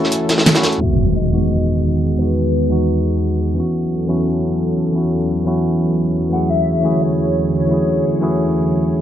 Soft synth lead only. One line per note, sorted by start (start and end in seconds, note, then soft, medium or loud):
0.00 0.46 C#5 medium
0.81 1.13 E5 loud
1.15 2.20 D#5 loud
2.19 3.39 B4 medium
6.33 6.49 F#5 loud
6.50 7.03 E5 loud
7.01 7.53 C#5 loud
7.53 8.18 C#5 medium